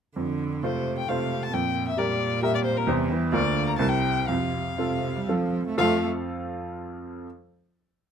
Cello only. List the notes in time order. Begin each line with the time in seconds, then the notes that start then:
0.16 D3
0.64 C3
1.09 C3
1.53 A#2
1.99 A#2
2.89 C3
3.11 E3
3.34 D3
3.80 C3
4.29 C3
4.78 C3
5.16 G3
5.29 F3
5.67 A3
5.80 A3